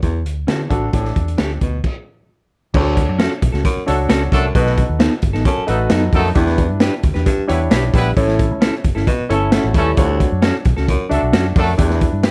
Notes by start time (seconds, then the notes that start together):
0.02 E2, kick, closed hi-hat
0.25 D2, closed hi-hat
0.47 E2 D3 C#4 F#4 A4, snare, closed hi-hat
0.69 A1 D2 D4 F#4 A4, kick, closed hi-hat
0.93 A1 A2 D4 G4 A4, kick, closed hi-hat
1.05 snare
1.16 E2, kick, closed hi-hat
1.28 closed hi-hat
1.38 D2 D4 G4 A4, snare, closed hi-hat
1.61 D2 B2, kick, closed hi-hat
1.84 kick, crash
2.74 D2 D4 F#4 A4 C#5, kick, crash
2.97 kick, closed hi-hat
3.09 F#2
3.19 C#4 F#4 A4, snare, closed hi-hat
3.42 B1, kick, closed hi-hat
3.52 C#2 C#4 F#4 A4, snare
3.65 F#2, kick, closed hi-hat
3.77 muted fingered electric bass stroke
3.86 C#2 F#3 A3 D4 F#4 A4 C#5, closed hi-hat
4.09 C#2 C#4 F#4 A4, snare, closed hi-hat
4.32 C2 F#2 F#3 A3 D4 A4, kick, closed hi-hat
4.55 B1 B2 D#4 F#4 A4 B4, kick, closed hi-hat
4.66 snare
4.78 kick, closed hi-hat
4.89 D#2
4.99 B3 D#4 A4, snare, closed hi-hat
5.22 G1, kick, closed hi-hat
5.33 A1 B3 D#4 A4, snare
5.45 F#2 C#4 A4, kick, closed hi-hat
5.58 muted fingered electric bass stroke
5.67 A1 F#3 A3 D#4 F#4 A4 B4, closed hi-hat
5.90 F#2 F#3 B3 D#4 A4, snare, closed hi-hat
6.13 F2 F#2 F#3 A3 D#4 A4, kick, open hi-hat
6.35 E2 D4 E4 G4 B4, kick, closed hi-hat
6.46 snare
6.58 kick, closed hi-hat
6.71 G2
6.80 D4 G4 B4, snare, closed hi-hat
7.03 D2, kick, closed hi-hat
7.14 E2 D4 G4 B4, snare
7.26 G2, kick, closed hi-hat
7.38 muted fingered electric bass stroke
7.47 E2 G3 B3 D4 E4 G4 B4 C#5, closed hi-hat
7.71 B1 D4 G4 B4, snare, closed hi-hat
7.94 A#1 G2 G3 B3 E4 B4, kick, closed hi-hat
8.16 A1 A2 C#4 E4 A4 C#5, kick, closed hi-hat
8.28 snare
8.39 kick, closed hi-hat
8.51 C#2
8.61 C#4 E4 A4, snare, closed hi-hat
8.84 F#1, kick, closed hi-hat
8.95 G1 C#4 E4 A4, snare
9.07 B2, kick, closed hi-hat
9.19 muted fingered electric bass stroke
9.29 G1 E3 A3 C#4 E4 A4 C#5, closed hi-hat
9.51 A3 C#4 E4 F#4 A4, snare, closed hi-hat
9.64 A1
9.74 D#2 A2 E3 G3 A3 C#4 E4 A4, kick, closed hi-hat
9.96 D2 D4 F4 A4 C#5, kick, closed hi-hat
10.02 F#4
10.20 kick, closed hi-hat
10.32 F#2
10.42 C#4 F#4 A4, snare, closed hi-hat
10.65 B1, kick, closed hi-hat
10.77 C#2 C#4 F#4 A4, snare
10.88 F#2, kick, closed hi-hat
11.09 C#2 F#3 A3 D4 F#4 A4 E5, closed hi-hat
11.22 B1
11.33 F#2 C#4 F#4 A4, snare, closed hi-hat
11.56 F2 F#2 F#3 A3 D4 A4, kick, open hi-hat
11.78 E2 D4 E4 G4 B4, kick, closed hi-hat
11.90 snare
12.01 kick, closed hi-hat
12.13 G2
12.23 D4 G4 B4, snare, closed hi-hat